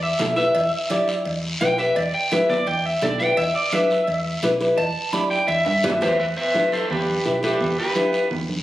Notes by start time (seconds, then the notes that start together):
Already playing: E2
0.03 E5
0.19 B1 E4 G4 A4, cowbell, high conga, low conga, low timbale, short guiro
0.36 E4 G4 B4 E5, short guiro
0.55 E2, cowbell, high conga, long guiro
0.90 E4 G4 D5, cowbell, high conga, short guiro
1.08 short guiro
1.25 E2, cowbell, high conga, long guiro
1.61 B1 E4 G4 B4 G5, cowbell, high conga, short guiro
1.78 E4 G4 B4 E5, short guiro
1.96 E2 D5, cowbell, high conga, long guiro
2.14 G5
2.31 E4 G4 B4 E5, cowbell, high conga, short guiro
2.49 D5, low conga, short guiro
2.67 E2 G5, cowbell, high conga, long guiro
2.86 E5
3.02 B1 E4 G4 A4 D5, cowbell, high conga, low conga, short guiro
3.19 E4 G4 B4 G5, short guiro
3.37 E2 E5, cowbell, high conga, long guiro
3.55 D5
3.72 E4 G4 B4 E5, cowbell, high conga, short guiro
3.90 short guiro
4.07 E2, cowbell, high conga, long guiro
4.43 B1 E4 G4 B4, cowbell, high conga, short guiro
4.60 E4 G4 B4, short guiro
4.78 E2 A5, cowbell, high conga, long guiro
5.13 E4 G4 D5 B5, cowbell, high conga, short guiro
5.31 G5, short guiro
5.47 E2 E5, cowbell, high conga, long guiro
5.65 G2 E5, high timbale
5.83 F#2 E4 G4 B4 D5, cowbell, high conga, low conga, short guiro
5.90 low timbale
6.01 E2 E4 G4 B4 C5 E5, low timbale, short guiro
6.20 E2 B4 E5, long guiro
6.37 B4 C5 E5
6.54 E4 G4 B4, high conga, short guiro
6.72 A4 C5, short guiro
6.90 E2 G4 B4, low conga, long guiro
7.07 high conga
7.25 B1 E4 G4 B4, high conga, short guiro
7.43 E4 G4 A4 B4, short guiro
7.60 E2, low conga, long guiro
7.79 G4 B4
7.95 E4 G4 B4, high conga, short guiro
8.13 short guiro
8.31 E2, low conga, long guiro
8.49 high conga